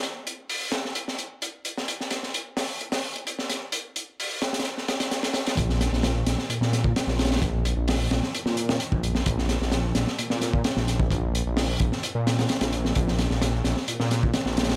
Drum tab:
HH |x---x---o---x---x---x---x---x---|x---x---x---o---x-o---x-x---x---|x---x---o---x-xxx---x-x-x-x-x-x-|x---x---x---x---x---x---x---xxxx|
SD |------------o-o---o-----------o-|--o-o-o-----o-----o-------o-o---|------------o-oo--o-o-o-o-o-o-o-|--o-o-o-o---o-o---o-o---o-o-oooo|
BD |--------------------------------|--------------------------------|--------------------------------|o---------------------o---------|

HH |x---x---o---x---x---x---x---x---|x---x---x---x---x---x---x---x---|x---x---o---x---x---x-x-x-x-x---|x---x---x---x---x---x---x---xxx-|
SD |--------o---o-o---o---o-------o-|--o-o-o-o---o-o---o-o---o-o-o---|--------o-----o-----o-o-o-o---o-|--o-o-o-o---o-o---o-o---o-o-ooo-|
BD |o-------------------------o-----|o---------------------o-------o-|o-----------o-------------------|o---------------------o---------|